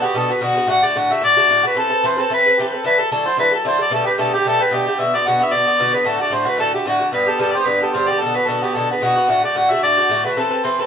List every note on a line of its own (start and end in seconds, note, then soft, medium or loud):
0.02 0.15 D3 medium
0.02 0.15 B3 medium
0.02 0.15 F#4 medium
0.02 0.20 G4 loud
0.14 0.30 B2 medium
0.14 0.31 D3 medium
0.14 0.30 B3 medium
0.14 0.29 F#4 medium
0.14 0.34 A4 loud
0.30 0.40 D3 soft
0.30 0.41 B3 soft
0.30 0.41 F#4 soft
0.30 0.45 B4 medium
0.41 0.56 B2 medium
0.41 0.56 D3 medium
0.41 0.55 B3 medium
0.41 0.53 F#4 medium
0.41 0.70 F#4 medium
0.54 0.66 D3 soft
0.54 0.67 B3 soft
0.54 0.67 F#4 medium
0.67 0.83 A2 medium
0.67 0.83 D3 medium
0.67 0.82 A3 medium
0.67 0.80 F#4 medium
0.67 0.87 F#5 loud
0.81 0.94 D3 soft
0.81 0.94 A3 soft
0.81 0.95 F#4 soft
0.81 1.01 D5 medium
0.95 1.10 A2 medium
0.95 1.11 D3 medium
0.95 1.11 A3 medium
0.95 1.10 F#4 medium
0.95 1.14 F#5 loud
1.11 1.21 D3 soft
1.11 1.21 A3 medium
1.11 1.22 F#4 medium
1.11 1.24 E5 medium
1.21 1.37 A2 medium
1.21 1.37 D3 medium
1.21 1.36 A3 medium
1.21 1.35 F#4 medium
1.21 1.62 D5 loud
1.37 1.49 D3 soft
1.37 1.49 A3 medium
1.37 1.49 F#4 medium
1.49 1.64 A2 medium
1.49 1.64 D3 medium
1.49 1.63 A3 medium
1.49 1.62 F#4 medium
1.63 1.75 D3 soft
1.63 1.76 A3 soft
1.63 1.76 F#4 medium
1.63 1.80 B4 medium
1.75 1.91 E3 medium
1.75 1.91 C4 medium
1.75 1.90 A4 medium
1.75 1.89 B4 medium
1.79 2.08 A4 loud
1.90 2.03 C4 soft
1.90 2.04 A4 soft
1.90 2.03 B4 soft
2.04 2.18 E3 medium
2.04 2.17 C4 medium
2.04 2.17 A4 medium
2.04 2.16 B4 medium
2.04 2.23 C5 medium
2.17 2.29 C4 soft
2.17 2.30 A4 medium
2.17 2.30 B4 medium
2.21 2.32 A4 medium
2.30 2.45 E3 medium
2.30 2.45 C4 medium
2.30 2.46 A4 medium
2.30 2.45 B4 medium
2.30 2.62 B4 loud
2.46 2.59 C4 soft
2.46 2.59 A4 soft
2.46 2.58 B4 soft
2.59 2.73 E3 medium
2.59 2.73 C4 medium
2.59 2.68 G4 medium
2.59 2.73 A4 medium
2.59 2.71 B4 medium
2.69 2.76 B4 soft
2.69 2.84 B4 soft
2.74 2.84 C4 soft
2.74 2.85 A4 medium
2.74 2.86 A4 medium
2.84 2.99 D3 medium
2.84 2.99 F#3 medium
2.84 2.99 E4 medium
2.84 2.98 A4 medium
2.84 3.01 B4 loud
2.99 3.10 F#3 soft
2.99 3.11 E4 soft
2.99 3.11 A4 soft
2.99 3.11 A4 medium
3.12 3.26 D3 medium
3.12 3.26 F#3 medium
3.12 3.26 E4 medium
3.12 3.28 A4 medium
3.12 3.25 A4 medium
3.26 3.37 F#3 soft
3.26 3.38 E4 medium
3.26 3.38 A4 medium
3.26 3.38 C5 loud
3.37 3.52 D3 medium
3.37 3.53 F#3 medium
3.37 3.52 E4 medium
3.37 3.51 A4 medium
3.37 3.52 B4 loud
3.52 3.64 F#3 soft
3.52 3.65 E4 soft
3.52 3.64 A4 soft
3.52 3.65 A4 medium
3.65 3.79 D3 medium
3.65 3.79 F#3 medium
3.65 3.79 E4 medium
3.65 3.78 A4 medium
3.65 3.80 C5 medium
3.79 3.91 F#3 soft
3.79 3.91 E4 soft
3.79 3.91 A4 medium
3.79 3.92 D5 medium
3.90 4.05 B2 medium
3.90 4.06 D3 medium
3.90 4.05 A3 medium
3.90 4.04 G4 medium
3.90 4.06 A4 medium
4.05 4.17 D3 soft
4.05 4.17 A3 soft
4.05 4.17 G4 soft
4.05 4.12 B4 medium
4.18 4.33 B2 medium
4.18 4.33 D3 medium
4.18 4.33 A3 medium
4.18 4.33 G4 medium
4.18 4.32 A4 medium
4.34 4.45 D3 medium
4.34 4.46 A3 medium
4.34 4.45 G4 medium
4.34 4.49 G4 loud
4.45 4.60 B2 medium
4.45 4.60 D3 medium
4.45 4.60 A3 medium
4.45 4.58 G4 medium
4.45 4.64 A4 loud
4.60 4.71 D3 soft
4.60 4.71 A3 soft
4.60 4.72 G4 medium
4.60 4.76 B4 loud
4.71 4.86 B2 medium
4.71 4.86 D3 medium
4.71 4.86 A3 medium
4.71 4.85 G4 medium
4.71 5.02 G4 loud
4.87 4.98 D3 soft
4.87 4.99 A3 soft
4.87 4.98 G4 soft
4.98 5.13 B2 medium
4.98 5.13 D3 medium
4.98 5.14 B3 medium
4.98 5.12 F#4 medium
4.98 5.18 E5 loud
5.14 5.26 D3 soft
5.14 5.26 B3 soft
5.14 5.25 F#4 soft
5.14 5.29 D5 loud
5.26 5.40 B2 medium
5.26 5.41 D3 medium
5.26 5.40 B3 medium
5.26 5.39 F#4 medium
5.26 5.41 F#5 medium
5.40 5.52 D3 soft
5.40 5.52 B3 medium
5.40 5.52 F#4 medium
5.40 5.55 E5 loud
5.52 5.67 B2 medium
5.52 5.67 D3 medium
5.52 5.66 B3 medium
5.52 5.65 F#4 medium
5.52 5.96 D5 loud
5.66 5.78 D3 soft
5.66 5.79 B3 soft
5.66 5.79 F#4 soft
5.79 5.94 B2 medium
5.79 5.94 D3 medium
5.79 5.93 B3 medium
5.79 5.92 F#4 medium
5.94 6.04 D3 soft
5.94 6.05 B3 soft
5.94 6.05 F#4 medium
5.94 6.09 B4 loud
6.04 6.20 A2 medium
6.04 6.20 D3 medium
6.04 6.20 A3 medium
6.04 6.18 F#4 medium
6.04 6.21 A4 medium
6.19 6.30 D3 soft
6.19 6.31 A3 soft
6.19 6.31 F#4 soft
6.19 6.36 D5 medium
6.30 6.46 A2 medium
6.30 6.46 D3 medium
6.30 6.45 A3 medium
6.30 6.44 F#4 medium
6.34 6.50 C5 loud
6.45 6.57 D3 soft
6.45 6.58 A3 medium
6.45 6.58 F#4 medium
6.45 6.59 B4 medium
6.57 6.73 A2 medium
6.57 6.74 D3 medium
6.57 6.74 A3 medium
6.57 6.73 F#4 medium
6.57 6.73 A4 loud
6.74 6.86 D3 soft
6.74 6.86 A3 soft
6.74 6.86 F#4 medium
6.74 6.86 G4 medium
6.86 7.01 A2 medium
6.86 7.01 D3 medium
6.86 7.00 A3 medium
6.86 6.98 F#4 medium
6.86 7.07 F#4 medium
7.00 7.12 D3 soft
7.00 7.13 A3 soft
7.00 7.12 F#4 medium
7.12 7.27 G2 medium
7.12 7.28 D3 medium
7.12 7.27 B3 medium
7.12 7.25 G4 medium
7.12 7.31 B4 medium
7.26 7.38 D3 soft
7.26 7.38 B3 soft
7.26 7.39 G4 soft
7.26 7.41 A4 medium
7.38 7.54 G2 medium
7.38 7.54 D3 medium
7.38 7.54 B3 medium
7.38 7.53 G4 medium
7.38 7.53 A4 medium
7.51 7.66 B3 medium
7.51 7.66 G4 medium
7.51 7.68 C5 loud
7.51 7.56 D5 medium
7.56 7.65 D3 soft
7.66 7.81 G2 medium
7.66 7.81 D3 medium
7.66 7.81 B3 medium
7.66 7.80 G4 medium
7.66 7.81 B4 loud
7.82 7.93 D3 soft
7.82 7.93 B3 soft
7.82 7.94 G4 soft
7.82 7.96 A4 medium
7.94 8.09 G2 medium
7.94 8.09 D3 medium
7.94 8.08 B3 medium
7.94 8.07 G4 medium
7.94 8.09 C5 loud
8.08 8.21 D3 soft
8.08 8.21 B3 soft
8.08 8.20 G4 soft
8.08 8.22 D5 medium
8.21 8.36 B2 medium
8.21 8.36 D3 medium
8.21 8.36 B3 medium
8.21 8.34 F#4 medium
8.21 8.37 A4 loud
8.35 8.46 D3 soft
8.35 8.48 B3 soft
8.35 8.48 F#4 soft
8.35 8.50 B4 loud
8.47 8.62 B2 medium
8.47 8.63 D3 medium
8.47 8.62 B3 medium
8.47 8.61 F#4 medium
8.47 8.63 A4 medium
8.62 8.76 D3 soft
8.62 8.75 B3 medium
8.62 8.75 F#4 medium
8.62 8.77 G4 medium
8.75 8.90 B2 medium
8.75 8.91 D3 medium
8.75 8.91 B3 medium
8.75 8.90 F#4 medium
8.75 8.90 A4 loud
8.91 9.01 D3 soft
8.91 9.02 B3 soft
8.91 9.02 F#4 medium
8.91 9.02 B4 medium
9.02 9.17 B2 medium
9.02 9.17 D3 medium
9.02 9.17 B3 medium
9.02 9.15 F#4 medium
9.02 9.32 F#4 medium
9.16 9.27 D3 soft
9.16 9.29 B3 soft
9.16 9.28 F#4 medium
9.28 9.43 A2 medium
9.28 9.43 D3 medium
9.28 9.42 A3 medium
9.28 9.42 F#4 medium
9.28 9.44 F#5 loud
9.43 9.55 D3 soft
9.43 9.56 A3 soft
9.43 9.56 F#4 soft
9.43 9.58 D5 medium
9.55 9.70 A2 medium
9.55 9.71 D3 medium
9.55 9.70 A3 medium
9.55 9.69 F#4 medium
9.55 9.72 F#5 loud
9.71 9.83 D3 medium
9.71 9.84 A3 medium
9.71 9.83 F#4 medium
9.71 9.82 E5 loud
9.83 9.98 A2 medium
9.83 9.98 D3 medium
9.83 9.98 A3 medium
9.83 9.96 F#4 medium
9.83 10.22 D5 loud
9.97 10.09 D3 soft
9.97 10.10 A3 soft
9.97 10.10 F#4 medium
10.09 10.25 A2 medium
10.09 10.25 D3 medium
10.09 10.25 A3 medium
10.09 10.24 F#4 medium
10.25 10.37 D3 soft
10.25 10.37 A3 soft
10.25 10.37 F#4 medium
10.25 10.36 B4 medium
10.37 10.52 E3 medium
10.37 10.52 C4 medium
10.37 10.51 A4 medium
10.37 10.66 A4 medium
10.37 10.49 B4 medium
10.51 10.63 C4 soft
10.51 10.63 A4 soft
10.51 10.64 B4 soft
10.64 10.79 E3 medium
10.64 10.79 C4 medium
10.64 10.79 A4 medium
10.64 10.78 B4 medium
10.64 10.81 C5 medium
10.79 10.86 C4 soft
10.79 10.86 A4 medium
10.79 10.86 B4 medium